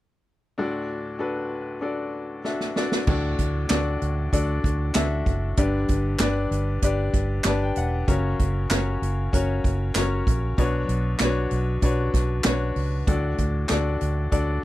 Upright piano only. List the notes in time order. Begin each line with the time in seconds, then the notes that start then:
0.58 D2 A2 D4 F#4 A4 D5
1.19 D4 F#4 A4 B4
1.81 D4 F#4 A4 D5
2.44 D4 F#4 A4 E5
2.76 D4 F#4 A4 D5
3.07 A2 D4 F#4 A4 D5
3.69 D4 F#4 A4 D5
4.33 D4 F#4 A4 D5
4.95 D4 F#4 A4 E5
5.58 G2 D3 D4 G4 B4 D5
6.20 D4 G4 B4 D5
6.83 D4 G4 B4 D5
7.46 D4 G4 B4 D5 A5
7.63 G5
7.78 F#5
8.07 C#3 C#4 F#4 A#4 C#5
8.70 C#4 F#4 A#4 C#5
9.33 C#4 F#4 A#4 C#5
9.96 C#4 F#4 A#4 C#5
10.58 B2 F#3 D4 F#4 B4 C#5
11.21 D4 F#4 B4 C#5
11.83 D4 F#4 B4 C#5
12.45 D4 F#4 B4 C#5
13.07 A2 D4 F#4 A4 D5
13.69 D4 F#4 A4 D5
14.32 D4 F#4 A4 D5